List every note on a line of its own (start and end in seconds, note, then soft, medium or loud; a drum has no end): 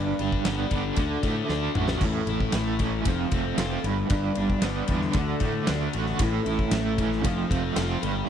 0.00 0.12 G1 loud
0.00 0.97 G2 medium
0.00 0.98 G2 medium
0.00 0.19 G3 medium
0.00 0.20 D4 medium
0.00 0.19 G4 medium
0.00 0.18 B4 medium
0.19 0.38 G1 medium
0.19 0.45 D4 soft
0.19 0.46 G4 medium
0.19 0.45 B4 medium
0.19 ride medium
0.32 kick medium
0.45 0.64 G1 medium
0.45 0.72 G3 medium
0.45 0.98 B3 medium
0.45 0.71 D4 medium
0.45 0.71 G4 medium
0.45 0.70 B4 medium
0.45 snare loud
0.45 ride medium
0.71 0.90 G1 medium
0.71 0.97 D3 medium
0.71 0.96 D4 soft
0.71 0.98 G4 medium
0.71 0.98 B4 medium
0.71 kick medium
0.71 ride medium
0.96 1.16 D2 loud
0.96 1.23 D3 medium
0.96 1.24 A3 medium
0.96 1.24 D4 medium
0.96 1.24 F#4 medium
0.96 1.23 A4 medium
0.96 kick loud
0.96 ride medium
1.23 1.42 A2 medium
1.23 2.01 A3 medium
1.23 1.76 A3 medium
1.23 1.49 D4 medium
1.23 1.49 F#4 medium
1.23 1.49 A4 medium
1.23 kick medium
1.23 ride medium
1.48 1.68 D2 medium
1.48 1.75 A3 medium
1.48 1.76 D4 medium
1.48 1.76 F#4 medium
1.48 1.75 A4 medium
1.48 snare medium
1.75 2.00 A1 medium
1.75 2.03 A3 medium
1.75 2.03 D4 soft
1.75 2.03 F#4 medium
1.75 2.02 A4 medium
1.75 mid tom medium
1.88 snare medium
2.01 2.19 A1 medium
2.01 2.28 A2 medium
2.01 2.28 E3 medium
2.01 2.29 A3 loud
2.01 2.29 C#4 loud
2.01 2.29 E4 medium
2.01 2.29 A4 medium
2.01 kick loud
2.01 crash medium
2.27 2.46 A1 medium
2.27 2.55 C#4 medium
2.27 2.55 E4 medium
2.27 2.55 A4 medium
2.27 ride medium
2.32 2.54 A3 medium
2.40 kick medium
2.52 3.06 A1 medium
2.52 2.81 A3 medium
2.52 2.81 C#4 medium
2.52 snare loud
2.52 ride loud
2.57 2.81 E4 medium
2.57 2.80 A4 medium
2.79 3.06 E3 medium
2.79 3.06 A3 soft
2.79 3.07 C#4 soft
2.79 3.07 E4 medium
2.79 3.06 A4 medium
2.79 kick medium
2.79 ride medium
3.05 3.24 F1 loud
3.05 3.84 F2 medium
3.05 3.33 F3 medium
3.05 3.33 A3 medium
3.05 3.33 C4 medium
3.05 3.33 F4 loud
3.05 3.32 A4 medium
3.05 kick loud
3.05 ride medium
3.31 3.50 F1 medium
3.31 3.84 A3 medium
3.31 3.58 C4 soft
3.31 3.58 F4 medium
3.31 3.59 A4 medium
3.31 kick medium
3.31 ride medium
3.58 3.76 F1 medium
3.58 3.85 A3 medium
3.58 3.85 C4 medium
3.58 3.85 F4 medium
3.58 3.85 A4 medium
3.58 snare loud
3.58 ride loud
3.84 4.02 G1 medium
3.84 4.08 G2 medium
3.84 4.09 G2 medium
3.84 4.10 D4 medium
3.84 4.11 G4 medium
3.84 4.11 B4 medium
3.84 ride medium
4.09 4.29 G1 loud
4.09 5.15 G2 medium
4.09 4.37 G3 loud
4.09 4.37 D4 medium
4.09 4.38 G4 medium
4.09 4.38 B4 loud
4.09 kick loud
4.09 ride loud
4.35 4.55 G1 medium
4.35 4.64 B4 medium
4.35 ride medium
4.39 4.63 D4 medium
4.39 4.63 G4 medium
4.50 kick medium
4.62 4.81 G1 medium
4.62 4.89 G3 medium
4.62 5.15 B3 medium
4.62 4.90 D4 medium
4.62 4.88 G4 medium
4.62 4.87 B4 medium
4.62 snare loud
4.62 ride medium
4.88 5.07 E2 medium
4.88 5.14 D3 medium
4.88 5.16 D4 soft
4.88 5.16 G4 soft
4.88 5.15 B4 medium
4.88 kick medium
4.88 ride medium
5.01 snare soft
5.13 5.33 D2 loud
5.13 5.42 D3 medium
5.13 5.42 A3 medium
5.13 5.42 D4 medium
5.13 5.41 F#4 medium
5.13 5.40 A4 loud
5.13 kick loud
5.13 ride medium
5.40 5.60 A2 medium
5.40 6.20 A3 medium
5.40 5.93 A3 medium
5.40 5.68 D4 soft
5.40 5.68 F#4 medium
5.40 5.68 A4 medium
5.40 kick medium
5.40 ride medium
5.67 5.87 D2 medium
5.67 5.94 A3 medium
5.67 5.95 D4 medium
5.67 5.95 F#4 medium
5.67 5.94 A4 medium
5.67 snare loud
5.67 ride medium
5.93 6.13 A1 medium
5.93 6.20 A3 medium
5.93 6.21 F#4 medium
5.93 6.21 A4 medium
5.93 ride medium
5.98 6.21 D4 soft
6.06 snare soft
6.19 6.38 A1 loud
6.19 6.47 A2 loud
6.19 6.47 E3 medium
6.19 6.45 A3 medium
6.19 6.45 C#4 loud
6.19 6.44 E4 loud
6.19 6.43 A4 medium
6.19 kick loud
6.19 ride loud
6.44 6.64 A1 medium
6.44 6.72 A3 medium
6.44 6.72 C#4 medium
6.44 6.72 E4 medium
6.44 6.72 A4 medium
6.44 ride medium
6.59 kick medium
6.71 7.24 A1 loud
6.71 6.99 A3 medium
6.71 6.99 C#4 medium
6.71 6.99 E4 medium
6.71 6.98 A4 medium
6.71 snare loud
6.71 ride loud
6.98 7.24 E3 medium
6.98 7.23 A3 soft
6.98 7.25 C#4 medium
6.98 7.24 E4 medium
6.98 7.25 A4 medium
6.98 kick medium
6.98 ride medium
7.12 snare soft
7.23 7.43 F1 medium
7.23 8.02 F2 medium
7.23 7.50 F3 medium
7.23 7.51 A3 medium
7.23 7.50 C4 medium
7.23 7.49 F4 loud
7.23 7.48 A4 medium
7.23 kick loud
7.23 ride loud
7.49 7.69 F1 medium
7.49 8.03 A3 medium
7.49 7.75 C4 soft
7.49 7.77 F4 medium
7.49 7.76 A4 medium
7.49 kick medium
7.49 ride medium
7.76 7.95 F1 loud
7.76 8.03 A3 medium
7.76 8.03 C4 medium
7.76 8.02 F4 medium
7.76 8.01 A4 medium
7.76 snare loud
7.76 ride loud
8.01 8.21 G1 medium
8.01 8.29 G2 medium
8.01 8.29 G3 medium
8.01 8.27 D4 soft
8.01 8.26 G4 medium
8.01 8.27 B4 medium
8.01 ride medium